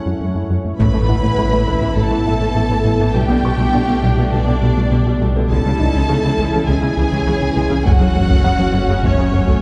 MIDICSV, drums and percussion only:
0, 0, Header, 1, 2, 480
1, 0, Start_track
1, 0, Tempo, 588235
1, 652, Time_signature, 4, 2, 24, 8
1, 7847, End_track
2, 0, Start_track
2, 0, Title_t, "Taiko and cinematic ensemble drums"
2, 652, Note_on_c, 9, 41, 52
2, 734, Note_off_c, 9, 41, 0
2, 1376, Note_on_c, 9, 41, 33
2, 1457, Note_off_c, 9, 41, 0
2, 4498, Note_on_c, 9, 41, 59
2, 4580, Note_off_c, 9, 41, 0
2, 5218, Note_on_c, 9, 41, 33
2, 5300, Note_off_c, 9, 41, 0
2, 6417, Note_on_c, 9, 41, 76
2, 6499, Note_off_c, 9, 41, 0
2, 6777, Note_on_c, 9, 41, 65
2, 6858, Note_off_c, 9, 41, 0
2, 7375, Note_on_c, 9, 41, 58
2, 7456, Note_off_c, 9, 41, 0
2, 7735, Note_on_c, 9, 41, 68
2, 7816, Note_off_c, 9, 41, 0
2, 7847, End_track
0, 0, End_of_file